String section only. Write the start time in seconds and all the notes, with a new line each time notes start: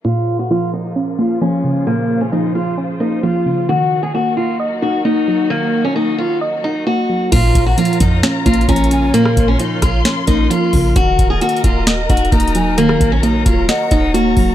0.05 C#3 F3 A#3 F4
1.87 C5
3.69 D#3 F#3 A#3 F#4
7.32 F4 A#4 C#5 A#5
9.14 C6
10.96 F#4 D#5 A#5
12.78 C#5